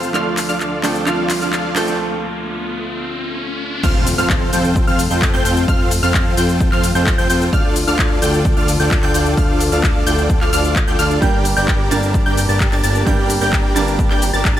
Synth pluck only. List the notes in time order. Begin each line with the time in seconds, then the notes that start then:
Already playing: F6
0.14 F6
0.49 F6
0.83 G6
1.07 F6
1.41 F6
1.76 G6
3.84 F6
4.18 F6
4.53 G6
4.87 F6
5.11 G6
5.34 G6
5.45 G6
5.68 F6
6.03 F6
6.37 G6
6.72 F6
6.95 G6
7.18 G6
7.30 G6
7.53 F6
7.88 F6
8.22 G6
8.57 F6
8.80 G6
9.03 G6
9.14 G6
9.37 F6
9.72 F6
10.07 G6
10.41 F6
10.53 F6
10.87 G6
10.99 F6
11.22 G6
11.57 G6
11.91 A6
12.26 G6
12.49 A6
12.72 A6
12.84 A6
13.07 G6
13.41 G6
13.76 A6
14.10 G6
14.34 A6
14.57 A6